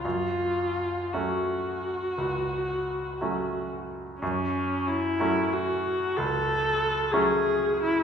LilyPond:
<<
  \new Staff \with { instrumentName = "Viola" } { \time 4/4 \key fis \minor \tempo 4 = 60 eis'4 fis'2~ fis'8 r8 | \tuplet 3/2 { cis'4 e'8~ e'8 fis'4 } a'4 gis'8. e'16 | }
  \new Staff \with { instrumentName = "Grand piano" } { \clef bass \time 4/4 \key fis \minor fis,4 <fis a cis'>4 cis,4 <fis a cis'>4 | fis,4 <fis a cis'>4 cis,4 <fis a cis'>4 | }
>>